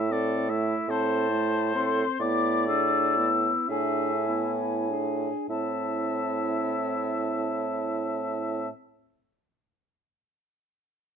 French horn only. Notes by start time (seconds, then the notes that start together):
Already playing: A3
0.11 C4
0.49 A3
0.89 C4
1.31 A3
1.75 C4
2.21 B3
2.68 D4
3.18 B3
3.70 D4
4.27 B3
4.90 D4
5.50 C4